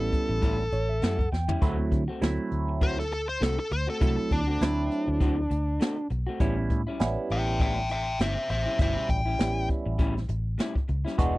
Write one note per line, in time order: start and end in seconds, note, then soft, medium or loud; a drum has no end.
0.00 0.62 G3 medium
0.00 0.63 B3 medium
0.00 0.63 C#4 medium
0.00 0.63 E4 medium
0.00 1.28 A4 medium
0.12 kick medium
0.12 closed hi-hat medium
0.29 0.68 A1 medium
0.29 muted clean electric guitar stroke soft
0.42 0.59 A2 medium
0.42 0.59 G3 medium
0.42 0.58 C#4 medium
0.42 0.58 E4 medium
0.42 kick medium
0.42 closed hi-hat medium
0.59 muted clean electric guitar stroke soft
0.72 0.99 A1 medium
0.72 0.88 C#5 medium
0.72 muted clean electric guitar stroke soft
0.72 closed hi-hat medium
0.89 1.01 E5 medium
1.02 1.29 F#2 medium
1.02 1.19 A2 medium
1.02 1.19 G3 medium
1.02 1.18 C#4 medium
1.02 1.18 E4 medium
1.02 1.30 F#5 medium
1.02 snare medium
1.02 closed hi-hat medium
1.19 muted clean electric guitar stroke soft
1.19 kick medium
1.32 1.59 E2 medium
1.32 1.60 G5 medium
1.32 muted clean electric guitar stroke soft
1.32 snare soft
1.48 1.62 G3 soft
1.48 1.62 C#4 soft
1.48 1.62 E4 medium
1.48 floor tom medium
1.61 1.89 D2 medium
1.61 1.78 D3 medium
1.61 2.02 F#3 medium
1.61 2.02 A3 medium
1.61 1.79 A3 medium
1.61 2.02 C4 medium
1.61 1.78 C4 medium
1.61 2.03 E4 medium
1.61 1.78 F#4 medium
1.61 kick loud
1.61 closed hi-hat medium
1.79 muted clean electric guitar stroke medium
1.92 2.07 D3 medium
1.92 muted clean electric guitar stroke soft
1.92 kick medium
1.92 closed hi-hat medium
2.08 2.21 A3 soft
2.08 2.21 C4 medium
2.08 2.21 F#4 medium
2.21 2.37 D2 medium
2.21 3.02 F#3 medium
2.21 3.02 A3 medium
2.21 3.02 C4 medium
2.21 3.02 E4 loud
2.21 muted clean electric guitar stroke soft
2.21 snare loud
2.21 closed hi-hat medium
2.51 3.37 D2 medium
2.51 closed hi-hat medium
2.68 muted clean electric guitar stroke soft
2.81 2.98 D3 medium
2.81 2.98 A3 medium
2.81 2.98 C4 medium
2.81 2.97 F#4 medium
2.81 2.98 C5 loud
2.81 kick medium
2.81 closed hi-hat medium
2.98 3.12 A4 medium
2.98 muted clean electric guitar stroke soft
2.98 snare soft
3.11 3.29 A4 medium
3.11 muted clean electric guitar stroke soft
3.11 closed hi-hat medium
3.29 3.42 C5 medium
3.40 3.56 C2 loud
3.40 3.58 D3 medium
3.40 3.58 A3 medium
3.40 3.57 C4 medium
3.40 3.56 F#4 medium
3.40 3.58 A4 medium
3.40 snare loud
3.40 closed hi-hat medium
3.58 3.72 A4 medium
3.58 muted clean electric guitar stroke soft
3.71 3.86 D2 medium
3.71 3.88 C5 medium
3.71 muted clean electric guitar stroke soft
3.71 closed hi-hat medium
3.87 4.00 A3 soft
3.87 4.01 C4 soft
3.87 4.01 F#4 soft
3.87 4.01 A4 medium
4.00 4.16 C2 loud
4.00 4.17 D3 medium
4.00 4.41 F#3 medium
4.00 4.41 A3 medium
4.00 4.18 A3 medium
4.00 4.41 C4 medium
4.00 4.17 C4 medium
4.00 4.42 E4 medium
4.00 4.17 F#4 medium
4.00 4.31 A4 medium
4.00 kick loud
4.00 closed hi-hat medium
4.18 muted clean electric guitar stroke soft
4.31 4.58 D2 medium
4.31 6.07 D4 medium
4.31 muted clean electric guitar stroke soft
4.31 kick medium
4.31 closed hi-hat medium
4.47 4.60 A3 soft
4.47 4.61 C4 soft
4.47 4.61 F#4 medium
4.61 4.88 D2 medium
4.61 5.41 F#3 medium
4.61 5.41 A3 medium
4.61 5.41 C4 medium
4.61 5.41 E4 medium
4.61 muted clean electric guitar stroke soft
4.61 snare loud
4.61 closed hi-hat medium
4.91 closed hi-hat medium
5.08 5.47 D2 medium
5.08 muted clean electric guitar stroke soft
5.20 5.37 D3 medium
5.20 5.37 A3 medium
5.20 5.36 C4 medium
5.20 5.36 F#4 medium
5.20 kick loud
5.20 closed hi-hat medium
5.37 muted clean electric guitar stroke soft
5.50 5.78 D2 medium
5.50 muted clean electric guitar stroke soft
5.50 closed hi-hat medium
5.80 5.97 D3 medium
5.80 5.97 A3 medium
5.80 5.97 C4 medium
5.80 5.96 F#4 medium
5.80 snare loud
5.80 closed hi-hat medium
5.97 muted clean electric guitar stroke soft
6.10 6.25 B1 medium
6.10 muted clean electric guitar stroke soft
6.10 closed hi-hat medium
6.27 6.40 A3 medium
6.27 6.41 C4 medium
6.27 6.40 F#4 medium
6.40 6.67 A1 medium
6.40 6.57 A2 medium
6.40 6.81 G3 medium
6.40 6.57 G3 medium
6.40 6.81 B3 medium
6.40 6.81 C#4 medium
6.40 6.57 C#4 medium
6.40 6.81 E4 loud
6.40 6.56 E4 medium
6.40 kick loud
6.40 closed hi-hat medium
6.57 muted clean electric guitar stroke soft
6.70 6.85 A2 medium
6.70 muted clean electric guitar stroke soft
6.70 kick medium
6.70 closed hi-hat medium
6.87 6.99 G3 soft
6.87 7.00 C#4 medium
6.87 7.00 E4 medium
7.00 7.15 A1 medium
7.00 7.80 G3 medium
7.00 7.80 B3 medium
7.00 7.80 C#4 medium
7.00 7.80 E4 medium
7.00 muted clean electric guitar stroke soft
7.00 snare loud
7.00 closed hi-hat medium
7.30 8.16 A1 medium
7.30 7.61 E5 medium
7.30 7.60 G5 medium
7.30 closed hi-hat medium
7.47 muted clean electric guitar stroke soft
7.59 7.76 A2 medium
7.59 7.76 G3 medium
7.59 7.75 C#4 medium
7.59 7.75 E4 medium
7.59 7.89 E5 medium
7.59 7.90 G5 medium
7.59 kick medium
7.59 closed hi-hat medium
7.76 muted clean electric guitar stroke soft
7.89 8.18 E5 medium
7.89 8.20 G5 medium
7.89 muted clean electric guitar stroke soft
7.89 closed hi-hat medium
8.19 8.35 G1 medium
8.19 8.36 A2 soft
8.19 8.36 G3 medium
8.19 8.35 C#4 medium
8.19 8.35 E4 medium
8.19 8.48 C5 medium
8.19 8.49 E5 medium
8.19 snare medium
8.19 closed hi-hat medium
8.36 muted clean electric guitar stroke soft
8.49 8.65 A1 medium
8.49 8.78 C5 medium
8.49 8.79 E5 medium
8.49 muted clean electric guitar stroke soft
8.49 closed hi-hat medium
8.66 8.79 G3 soft
8.66 8.79 C#4 medium
8.66 8.79 E4 soft
8.79 8.94 G1 loud
8.79 8.96 A2 medium
8.79 9.20 B2 medium
8.79 9.20 G3 medium
8.79 8.96 G3 medium
8.79 9.20 C#4 medium
8.79 8.95 C#4 medium
8.79 9.20 E4 medium
8.79 8.95 E4 medium
8.79 9.08 C5 medium
8.79 9.10 E5 medium
8.79 kick loud
8.79 closed hi-hat medium
8.96 muted clean electric guitar stroke soft
9.09 9.36 A1 medium
9.09 9.68 G5 medium
9.09 muted clean electric guitar stroke soft
9.09 kick medium
9.09 closed hi-hat medium
9.26 9.38 G3 soft
9.26 9.39 C#4 soft
9.26 9.39 E4 medium
9.39 9.66 A1 medium
9.39 10.19 G3 medium
9.39 10.19 B3 medium
9.39 10.19 C#4 medium
9.39 10.19 E4 medium
9.39 muted clean electric guitar stroke soft
9.39 snare loud
9.39 closed hi-hat medium
9.69 kick medium
9.69 closed hi-hat medium
9.86 10.25 A1 medium
9.86 muted clean electric guitar stroke soft
9.99 10.15 A2 medium
9.99 10.16 G3 medium
9.99 10.15 C#4 medium
9.99 10.14 E4 loud
9.99 kick loud
9.99 closed hi-hat medium
10.16 muted clean electric guitar stroke soft
10.16 snare soft
10.29 10.56 A1 medium
10.29 muted clean electric guitar stroke soft
10.29 closed hi-hat medium
10.58 10.75 A2 medium
10.58 10.75 G3 medium
10.58 10.75 C#4 medium
10.58 10.74 E4 medium
10.58 snare medium
10.58 closed hi-hat medium
10.75 muted clean electric guitar stroke soft
10.75 kick medium
10.88 11.04 C#2 medium
10.88 muted clean electric guitar stroke soft
10.88 closed hi-hat medium
11.05 11.18 G3 medium
11.05 11.18 C#4 medium
11.05 11.18 E4 medium
11.05 snare soft
11.18 11.38 E1 medium
11.18 11.35 E3 medium
11.18 11.38 G#3 medium
11.18 11.38 B3 medium
11.18 11.35 B3 medium
11.18 11.38 D4 medium
11.18 11.35 D4 medium
11.18 11.38 F#4 loud
11.18 11.34 G#4 medium
11.18 kick loud
11.18 closed hi-hat medium
11.35 muted clean electric guitar stroke soft